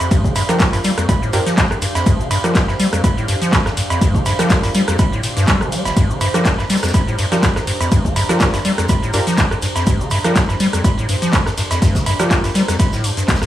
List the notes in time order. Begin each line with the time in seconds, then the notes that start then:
Already playing: D4 G4 C5 F5
0.00 F2, closed hi-hat, cowbell, cabasa
0.11 G2, kick, closed hi-hat, ride, cabasa, shaker
0.24 D3, kick, cabasa
0.35 G2, open hi-hat, ride, cowbell, shaker
0.49 F3 D4 F4 G4 A#4, cross-stick, closed hi-hat, cabasa
0.59 G2, kick, snare, clap, closed hi-hat, ride, cabasa, shaker
0.73 G2, snare, open hi-hat, cowbell, cabasa
0.84 G3, open hi-hat, ride, shaker
0.98 F2, cross-stick, closed hi-hat, cabasa
1.09 A#2, kick, closed hi-hat, ride, cowbell, cabasa, shaker
1.22 A2, cabasa
1.33 G2 D4 F4 G4 A#4, open hi-hat, ride, shaker
1.46 F3, snare, closed hi-hat, cabasa
1.58 G2, kick, snare, clap, closed hi-hat, ride, cowbell, cabasa, shaker
1.71 G2, cross-stick, cabasa
1.82 G2, open hi-hat, ride, shaker
1.95 F2, snare, closed hi-hat, cowbell, cabasa
2.06 G2, kick, closed hi-hat, ride, cabasa, shaker
2.20 D3, cabasa
2.31 G2, open hi-hat, ride, cowbell, shaker
2.44 F3 D4 F4 G4 A#4, cross-stick, closed hi-hat, cabasa
2.55 G2, kick, snare, clap, closed hi-hat, ride, cabasa, shaker
2.68 G2, snare, cowbell, cabasa
2.79 G3, open hi-hat, ride, shaker
2.93 F2, cross-stick, closed hi-hat, cabasa
3.04 A#2, kick, closed hi-hat, ride, cowbell, cabasa, shaker
3.17 A2, cabasa
3.28 G2, open hi-hat, ride, shaker
3.41 F3, snare, closed hi-hat, cabasa
3.53 G2, kick, snare, clap, closed hi-hat, ride, cowbell, cabasa, shaker
3.66 G2, cross-stick, snare, cabasa
3.77 G2, open hi-hat, ride, shaker
3.90 F2, closed hi-hat, cowbell, cabasa
4.01 G2, kick, closed hi-hat, ride, cabasa, shaker
4.15 D3, kick, cabasa
4.25 G2, open hi-hat, ride, cowbell, shaker
4.39 F3 D4 F4 G4 A#4, cross-stick, closed hi-hat, cabasa
4.50 G2, kick, snare, clap, closed hi-hat, ride, cabasa, shaker
4.63 G2, snare, open hi-hat, cowbell, cabasa
4.74 G3, open hi-hat, ride, shaker
4.88 F2, cross-stick, closed hi-hat, cabasa
4.99 A#2, kick, closed hi-hat, ride, cowbell, cabasa, shaker
5.12 A2, cabasa
5.23 A#2, open hi-hat, ride, shaker
5.37 G2, snare, closed hi-hat, cabasa
5.47 G3, kick, snare, clap, closed hi-hat, ride, cowbell, cabasa, shaker
5.61 A#2, cross-stick, cabasa
5.72 G3, open hi-hat, ride, shaker
5.85 G1, snare, closed hi-hat, cowbell, cabasa
5.97 G2, kick, closed hi-hat, ride, cabasa, shaker
6.10 D3, cabasa
6.21 G2 A#5, open hi-hat, ride, cowbell, shaker
6.34 F3 D4 F4 G4 A#4, cross-stick, closed hi-hat, cabasa
6.45 G2, kick, snare, clap, closed hi-hat, ride, cabasa, shaker
6.59 G2, snare, cowbell, cabasa
6.70 G3, snare, open hi-hat, ride, shaker
6.76 snare, shaker
6.83 F2, cross-stick, snare, closed hi-hat, cabasa, shaker
6.88 snare, shaker
6.94 A#2, kick, closed hi-hat, ride, cowbell, cabasa, shaker
7.08 A2, cabasa
7.18 G2, open hi-hat, ride, shaker
7.32 F3 D4 F4 G4 A#4, snare, closed hi-hat, cabasa
7.43 G2, kick, snare, clap, closed hi-hat, ride, cowbell, cabasa, shaker
7.56 G2, cross-stick, snare, cabasa
7.67 G2, open hi-hat, ride, shaker
7.80 F2, closed hi-hat, cowbell, cabasa
7.91 G2, kick, closed hi-hat, ride, cabasa, shaker
8.05 D3, kick, cabasa
8.16 G2, open hi-hat, ride, cowbell, shaker
8.29 F3 D4 F4 G4 A#4, cross-stick, closed hi-hat, cabasa
8.40 G2, kick, snare, clap, closed hi-hat, ride, cabasa, shaker
8.54 G2, snare, open hi-hat, cowbell, cabasa
8.65 G3, open hi-hat, ride, shaker
8.78 F2, cross-stick, closed hi-hat, cabasa
8.89 A#2, kick, closed hi-hat, ride, cowbell, cabasa, shaker
9.03 A2, cabasa
9.13 G2 D4 F4 G4 A#4, open hi-hat, ride, shaker
9.27 F3, snare, closed hi-hat, cabasa
9.38 G2, kick, snare, clap, closed hi-hat, ride, cowbell, cabasa, shaker
9.51 G2, cross-stick, cabasa
9.62 G2, open hi-hat, ride, shaker
9.75 F2, snare, closed hi-hat, cowbell, cabasa
9.86 G2, kick, closed hi-hat, ride, cabasa, shaker
10.00 D3, cabasa
10.10 G2, open hi-hat, ride, cowbell, shaker
10.24 F3 D4 F4 G4 A#4, cross-stick, closed hi-hat, cabasa
10.35 G2, kick, snare, clap, closed hi-hat, ride, cabasa, shaker
10.49 G2, snare, cowbell, cabasa
10.60 G3, open hi-hat, ride, shaker
10.73 F2, cross-stick, closed hi-hat, cabasa
10.84 A#2, kick, closed hi-hat, ride, cowbell, cabasa, shaker
10.98 A2, cabasa
11.09 G2, open hi-hat, ride, shaker
11.22 F3, snare, closed hi-hat, cabasa
11.32 G2, kick, snare, clap, closed hi-hat, ride, cowbell, cabasa, shaker
11.46 G2, cross-stick, snare, cabasa
11.57 G2, snare, open hi-hat, ride, shaker
11.71 F2, snare, closed hi-hat, cowbell, cabasa, shaker
11.82 G2, kick, snare, closed hi-hat, ride, cabasa, shaker
11.95 D3, kick, snare, cabasa, shaker
12.06 G2, open hi-hat, ride, cowbell, shaker
12.19 F3 D4 F4 G4 A#4, cross-stick, closed hi-hat, cabasa
12.30 G2, kick, snare, clap, closed hi-hat, ride, cabasa, shaker
12.44 G2, snare, open hi-hat, cowbell, cabasa
12.54 G3, snare, open hi-hat, ride, shaker
12.68 F2, cross-stick, snare, closed hi-hat, cabasa, shaker
12.79 A#2, kick, snare, closed hi-hat, ride, cowbell, cabasa, shaker
12.93 A2, snare, cabasa, shaker
13.04 G2, open hi-hat, ride, shaker
13.17 G2, snare, closed hi-hat, cabasa
13.28 F2, kick, snare, clap, closed hi-hat, ride, cowbell, cabasa, shaker
13.35 snare, shaker
13.42 G2, cross-stick, snare, cabasa, shaker